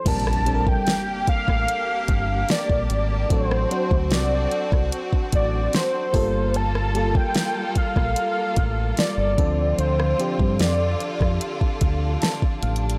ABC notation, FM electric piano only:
X:1
M:4/4
L:1/8
Q:1/4=74
K:Bb
V:1 name="FM electric piano"
[G,CDB] [G,CDAB]3 z4 | [^F,CDA] [F,CD^F]3 z3 [G,B,=FA]- | [G,B,FA] [G,B,FA]3 z3 [F,CDA]- | [F,CDA] [F,CDG]3 z2 a f |]